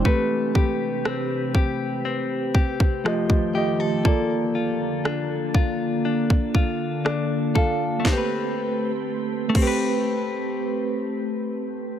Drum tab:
CC |----------------|----------------|------x---------|
SD |----r-------r---|----r-------r---|o---------------|
BD |o-o---o---oo-o--|o-----o--oo---o-|o-----o---------|